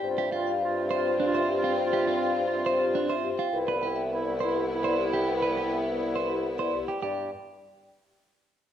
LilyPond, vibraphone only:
\new Staff \with { instrumentName = "Vibraphone" } { \time 3/4 \key g \mixolydian \tempo 4 = 103 c''16 e''16 g''16 f''16 c''16 e''16 c''16 g'16 c''16 e''16 g'16 g''16 | c''16 e''16 g''16 f''16 c''16 e''16 c''16 g'16 c''16 e''16 g'16 g''16 | b'16 d''16 g''16 e''16 b'16 d''16 b'16 g'16 b'16 d''16 g'16 g''16 | b'16 d''16 g''16 e''16 b'16 d''16 b'16 g'16 b'16 d''16 g'16 g''16 |
d''8 r2 r8 | }